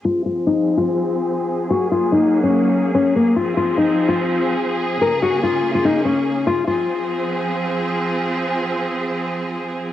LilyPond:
<<
  \new Staff \with { instrumentName = "Nylon-string guitar" } { \time 4/4 \key f \phrygian \tempo 4 = 145 f'8 f'8 ees'8. f'2~ f'16 | ges'8 f'8 ees'8. des'4~ des'16 des'8 bes8 | f'8 f'8 ees'8. f'2~ f'16 | bes'8 ges'8 f'8. f'16 ees'8 des'4 f'8 |
f'2. r4 | r1 | }
  \new Staff \with { instrumentName = "String section" } { \time 4/4 \key f \phrygian << { aes'1~ | aes'1 | aes'1~ | aes'1 |
<f c' aes'>1~ | <f c' aes'>1 | } \\ { <f c'>1 | <ges bes>1 | <f c'>1 | <des bes>1 |
r1 | r1 | } >> }
>>